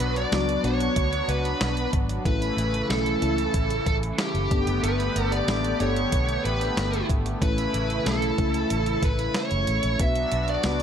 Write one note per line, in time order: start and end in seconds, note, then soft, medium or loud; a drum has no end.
0.00 0.24 B1 medium
0.00 0.25 F#3 medium
0.00 2.23 F#3 medium
0.00 0.25 B3 medium
0.00 2.23 B3 medium
0.00 0.25 D4 medium
0.00 2.23 D4 medium
0.00 0.25 F#4 medium
0.00 2.23 F#4 medium
0.00 0.13 B4 medium
0.00 closed hi-hat medium
0.16 0.65 D5 medium
0.16 closed hi-hat soft
0.32 0.56 C#2 medium
0.32 0.60 F#3 medium
0.32 0.60 B3 medium
0.32 0.61 D4 medium
0.32 0.61 F#4 medium
0.32 snare loud
0.32 closed hi-hat medium
0.49 closed hi-hat soft
0.64 0.88 B1 medium
0.64 1.78 F#3 medium
0.64 1.78 B3 medium
0.64 1.79 D4 medium
0.64 1.79 F#4 medium
0.64 1.29 C#5 medium
0.64 closed hi-hat medium
0.81 closed hi-hat medium
0.96 1.21 D2 medium
0.96 kick medium
0.96 closed hi-hat medium
1.13 closed hi-hat soft
1.28 1.53 C#2 medium
1.28 1.90 B4 medium
1.28 closed hi-hat medium
1.45 closed hi-hat soft
1.61 1.85 B1 medium
1.61 snare loud
1.61 closed hi-hat medium
1.77 closed hi-hat soft
1.93 2.17 G#1 medium
1.93 kick medium
1.93 closed hi-hat medium
2.09 closed hi-hat medium
2.25 2.50 A1 medium
2.25 4.49 C#3 medium
2.25 4.49 E3 medium
2.25 2.82 A3 medium
2.25 9.96 A3 medium
2.25 2.83 C#4 medium
2.25 4.49 E4 medium
2.25 2.83 E4 medium
2.25 2.83 A4 medium
2.25 2.86 B4 medium
2.25 kick loud
2.25 closed hi-hat medium
2.42 closed hi-hat soft
2.57 2.81 A1 medium
2.57 closed hi-hat medium
2.74 closed hi-hat soft
2.89 3.14 B1 medium
2.89 3.18 A3 medium
2.89 3.18 C#4 medium
2.89 3.19 E4 medium
2.89 3.86 A4 medium
2.89 3.19 A4 medium
2.89 snare loud
2.89 closed hi-hat medium
3.06 closed hi-hat soft
3.22 3.46 C#2 medium
3.22 4.36 A3 medium
3.22 4.36 C#4 medium
3.22 4.37 E4 medium
3.22 4.37 A4 medium
3.22 closed hi-hat medium
3.38 closed hi-hat medium
3.54 3.78 A1 medium
3.54 kick medium
3.54 closed hi-hat medium
3.70 closed hi-hat soft
3.86 4.11 A1 medium
3.86 3.96 A4 medium
3.86 kick medium
3.86 closed hi-hat medium
4.03 closed hi-hat soft
4.18 4.80 G4 medium
4.18 snare loud
4.18 closed hi-hat medium
4.34 4.47 F#1 medium
4.34 closed hi-hat soft
4.51 4.63 G1 medium
4.51 7.39 D3 medium
4.51 5.37 B3 medium
4.51 7.39 B3 medium
4.51 5.37 D4 medium
4.51 7.39 G4 medium
4.51 5.37 G4 medium
4.51 5.37 A4 medium
4.51 kick medium
4.51 closed hi-hat medium
4.67 4.79 F#1 medium
4.67 closed hi-hat medium
4.83 5.07 G1 loud
4.83 5.32 B4 loud
4.83 closed hi-hat medium
5.00 closed hi-hat soft
5.16 5.40 G1 medium
5.16 closed hi-hat medium
5.32 5.80 D5 medium
5.32 closed hi-hat soft
5.48 5.72 A1 loud
5.48 5.76 B3 medium
5.48 5.77 D4 medium
5.48 5.77 G4 medium
5.48 5.77 A4 medium
5.48 snare loud
5.48 closed hi-hat medium
5.64 closed hi-hat soft
5.80 6.04 G1 medium
5.80 6.94 B3 medium
5.80 6.95 D4 medium
5.80 6.95 G4 medium
5.80 6.95 A4 medium
5.80 6.45 C#5 medium
5.80 closed hi-hat medium
5.96 closed hi-hat medium
6.12 6.37 B1 medium
6.12 kick medium
6.12 closed hi-hat medium
6.29 closed hi-hat soft
6.45 6.69 A1 medium
6.45 7.05 B4 medium
6.45 closed hi-hat medium
6.61 closed hi-hat soft
6.77 7.01 G1 medium
6.77 snare loud
6.77 closed hi-hat medium
6.93 closed hi-hat soft
7.10 7.34 G#1 medium
7.10 kick medium
7.10 closed hi-hat medium
7.26 closed hi-hat medium
7.41 7.66 A1 medium
7.41 9.97 C#3 medium
7.41 9.97 E3 medium
7.41 7.98 A3 medium
7.41 7.99 C#4 medium
7.41 9.97 E4 medium
7.41 7.99 E4 medium
7.41 7.99 A4 medium
7.41 8.09 B4 medium
7.41 kick loud
7.41 closed hi-hat medium
7.58 closed hi-hat soft
7.74 7.98 A1 medium
7.74 closed hi-hat medium
7.90 closed hi-hat soft
8.06 8.30 B1 medium
8.06 8.35 A3 medium
8.06 8.35 C#4 medium
8.06 8.35 E4 medium
8.06 8.35 A4 medium
8.06 9.07 A4 medium
8.06 snare loud
8.06 closed hi-hat medium
8.22 closed hi-hat soft
8.38 8.63 C#2 medium
8.38 9.53 A3 medium
8.38 9.53 C#4 medium
8.38 9.53 E4 medium
8.38 9.53 A4 medium
8.38 kick medium
8.38 closed hi-hat medium
8.54 closed hi-hat soft
8.70 8.95 A1 medium
8.70 closed hi-hat medium
8.86 closed hi-hat soft
9.03 9.27 A1 medium
9.03 9.34 B4 medium
9.03 kick medium
9.03 closed hi-hat medium
9.19 closed hi-hat soft
9.34 10.02 C#5 medium
9.34 snare loud
9.34 closed hi-hat medium
9.51 9.64 F#1 medium
9.51 closed hi-hat soft
9.67 9.80 A1 medium
9.67 closed hi-hat medium
9.83 9.96 A#1 medium
9.83 closed hi-hat medium
9.99 10.24 B1 medium
9.99 10.83 F#3 medium
9.99 10.57 B3 medium
9.99 10.83 B3 medium
9.99 10.57 D4 medium
9.99 10.83 D4 medium
9.99 10.57 F#4 medium
9.99 10.83 F#4 medium
9.99 10.57 B4 medium
9.99 10.45 E5 loud
9.99 kick loud
9.99 closed hi-hat medium
10.15 closed hi-hat soft
10.32 10.56 B1 medium
10.32 closed hi-hat medium
10.48 10.83 D5 medium
10.48 closed hi-hat soft
10.63 10.83 C#2 medium
10.63 10.83 B3 medium
10.63 10.83 D4 medium
10.63 10.83 F#4 medium
10.63 10.83 B4 medium
10.63 snare loud
10.63 closed hi-hat medium